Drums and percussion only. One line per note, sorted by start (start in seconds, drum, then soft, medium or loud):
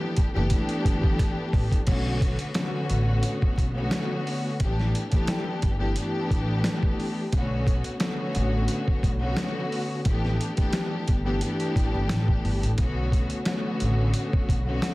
0.17 kick medium
0.17 closed hi-hat medium
0.50 kick medium
0.50 closed hi-hat loud
0.69 closed hi-hat soft
0.85 kick medium
0.85 closed hi-hat medium
1.03 kick medium
1.19 finger snap medium
1.19 kick loud
1.19 closed hi-hat medium
1.53 kick loud
1.53 open hi-hat medium
1.72 kick medium
1.72 closed hi-hat medium
1.87 kick loud
1.87 closed hi-hat medium
1.87 crash medium
2.21 kick loud
2.21 closed hi-hat medium
2.39 closed hi-hat medium
2.54 finger snap medium
2.54 snare loud
2.54 closed hi-hat medium
2.90 closed hi-hat medium
3.23 closed hi-hat loud
3.42 kick medium
3.58 kick medium
3.58 closed hi-hat medium
3.91 finger snap medium
3.91 snare loud
3.91 closed hi-hat medium
4.27 open hi-hat medium
4.60 kick loud
4.60 closed hi-hat medium
4.79 snare soft
4.95 closed hi-hat medium
5.12 kick medium
5.12 closed hi-hat medium
5.27 finger snap medium
5.27 snare loud
5.27 closed hi-hat loud
5.62 kick medium
5.62 closed hi-hat medium
5.96 closed hi-hat loud
6.31 kick medium
6.31 closed hi-hat medium
6.64 finger snap medium
6.64 snare loud
6.64 closed hi-hat medium
6.83 kick medium
7.00 open hi-hat medium
7.33 kick loud
7.33 closed hi-hat loud
7.67 kick loud
7.67 closed hi-hat medium
7.84 closed hi-hat medium
8.00 finger snap medium
8.00 snare loud
8.00 closed hi-hat medium
8.35 closed hi-hat medium
8.68 closed hi-hat loud
8.88 kick medium
9.03 kick medium
9.03 closed hi-hat medium
9.37 finger snap medium
9.37 snare loud
9.37 closed hi-hat medium
9.72 open hi-hat medium
10.05 kick loud
10.05 closed hi-hat medium
10.25 snare soft
10.41 closed hi-hat medium
10.57 kick medium
10.57 closed hi-hat medium
10.73 finger snap medium
10.73 snare loud
10.73 closed hi-hat loud
11.08 kick medium
11.08 closed hi-hat medium
11.41 closed hi-hat loud
11.60 closed hi-hat soft
11.76 kick medium
11.76 closed hi-hat medium
12.09 finger snap medium
12.09 snare loud
12.09 closed hi-hat medium
12.28 kick medium
12.45 open hi-hat medium
12.63 closed hi-hat soft
12.78 kick loud
12.78 closed hi-hat loud
13.12 kick loud
13.12 closed hi-hat medium
13.30 closed hi-hat medium
13.45 finger snap medium
13.45 snare loud
13.45 closed hi-hat loud
13.80 closed hi-hat medium
14.14 closed hi-hat loud
14.33 kick medium
14.49 kick loud
14.49 closed hi-hat medium
14.82 finger snap medium
14.82 snare loud
14.82 closed hi-hat medium